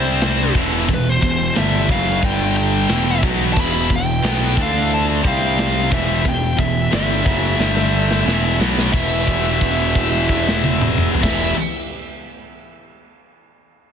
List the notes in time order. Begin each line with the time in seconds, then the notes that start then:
Already playing: C2 C3 G3 C4 D4 C5
0.21 snare, ride
0.54 E1 E2 B2 E3, kick, ride
0.58 B2 G5
0.87 E1 E2 B2, kick, ride
0.94 B4
1.09 C5
1.21 E1 E2 B2, kick, ride
1.54 G2 D3 G3, snare, ride
1.58 G1 E5
1.88 F#1 F#2 C#3 F#3 F5, kick, ride
2.21 G1 G2 D3 G3 D4, kick, ride
2.25 G5
2.56 G5, ride
2.89 E1 E2 B2 E3 B3 E4, snare, ride
3.23 B1 B2 F#3 B3, kick, ride
3.53 E1 E2 A5, kick, crash
3.57 B2 E3 B5
3.90 E1 E2 B2, kick, ride
3.96 G5
4.24 B1 B2 F#3 B3, snare, ride
4.55 D2 D3 E3 A3 D4 D5, kick, ride
4.63 F5
4.90 A5, ride
5.21 C2 C3 G3 C4 D4 C5, kick, ride
5.28 F5
5.58 snare, ride
5.91 E1 E2 B2 E3 B3 E4 E5 G5, kick, ride
6.24 E1 E2 B2, kick, ride
6.29 G5
6.57 E1 E2 B2 E5, kick, ride
6.91 G1 G2 D3 G3 E5, snare, ride
7.24 F#1 F#2 C#3 F#3, kick, ride
7.58 G1 G2 D3 G3 D4, snare
7.77 snare
8.11 snare
8.25 E1 E2 B2 E3 B3 E4, snare
8.59 B1 B2 F#3 B3, snare
8.79 snare
8.90 E1 E2 B2 E3 B3 E4 G4 E5, kick, crash
8.95 E3
9.27 kick, crash
9.45 crash
9.61 kick, crash
9.80 crash
9.95 kick, crash
10.13 crash
10.29 kick, crash
10.48 snare
10.64 high tom
10.81 mid tom
10.98 mid tom
11.14 floor tom
11.19 E2 E3 B3 E4 G4
11.23 E1 B2 E3 E5, kick, snare, crash